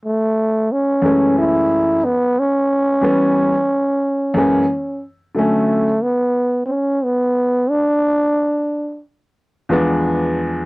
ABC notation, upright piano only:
X:1
M:4/4
L:1/8
Q:"Swing 16ths" 1/4=90
K:F#m
V:1 name="Upright piano" clef=bass
z3 [F,,E,G,A,C]3 z2 | z [E,=G,B,C] z3 [F,,E,^G,^A,C] z2 | [D,F,A,C] z6 z | z4 z [E,,=F,G,B,D]3 |]